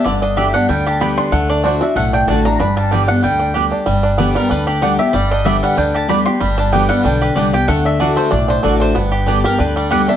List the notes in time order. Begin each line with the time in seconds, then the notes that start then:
Already playing: D4 G4
0.04 G1 G2 D3 D5
0.22 D4 D#5
0.36 D3 G3 B3 G4 D5 E5 G5
0.53 B3 D4 G4 F#5
0.69 D2 D3 G3 G5
0.86 G4 A5
1.00 D3 G3 B3 G4 D5 G5 B5
1.18 D4 C6
1.32 D2 D3 A3 F#5
1.50 D4 D5
1.64 D3 A3 D4 F#4 C5 D5 F#5
1.81 D4 F#4 E5
1.96 B1 A2 A3 F#5
2.13 D4 G5
2.27 A1 D3 A3 D4 F#4 D5 F#5 A5
2.45 D4 F#4 A#5
2.60 G1 G2 D4 B5
2.77 G3 A5
2.91 D3 G3 B3 G4 D5 G5
3.08 B3 D4 G4 F#5
3.23 D2 D3 G3 G5
3.39 D4
3.54 D3 G3 B3 G4 D5 G5
3.71 D4
3.86 G1 G2 G3
4.03 D4
4.18 D3 G3 B3 G4 D5 G5
4.35 G3 B3 G4 A#4
4.50 D2 D3 D4 B4
4.67 G4 D5
4.81 D3 G3 B3 D4 G4 D5 F#5 G5
4.99 B3 G4 E5
5.13 G1 G2 G3 D5
5.31 D4 D#5
5.45 D3 G3 B3 G4 D5 E5 G5
5.63 G3 F#5
5.76 D2 D3 D4 G5
5.94 G4 A5
6.08 D3 G3 B3 D4 G4 D5 G5 B5
6.25 B3 G4 C6
6.40 G1 G2 G3 B5
6.58 D4 A5
6.72 D3 G3 B3 G4 D5 G5
6.89 G3 B3 G4 F#5
7.04 B1 D3 D4 G5
7.21 G4 B4
7.35 C2 D3 G3 B3 D4 G4 D5 G5
7.53 B3 G4 G5
7.68 D2 D3 A3 F#5
7.85 D4 E5
8.00 D3 A3 D4 F#4 D5 F#5
8.16 A3 C5
8.31 B1 A2 D4 D5
8.48 D4 C5
8.63 A1 D3 A3 D4 F#4 A4 D5 F#5
8.80 D4 C5
8.95 G1 G2 B3
9.12 G4
9.26 D3 G3 B3 D4 G4 D5 G5
9.44 B3 G4 A#4
9.59 D2 D3 D4 B4
9.76 G3 D5
9.90 D3 G3 B3 G4 D5 F#5 G5
10.08 B3 D4 G4 E5